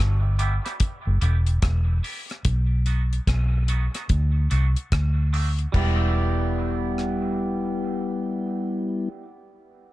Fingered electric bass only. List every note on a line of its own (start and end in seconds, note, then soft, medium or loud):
0.00 0.58 G1 medium
1.07 1.20 F#1 medium
1.22 1.58 E1 loud
1.63 1.99 E1 medium
2.45 3.18 B1 loud
3.28 3.87 B1 medium
4.10 4.47 D2 loud
4.51 4.74 C2 medium
4.92 5.65 D2 medium
5.74 9.10 E1 medium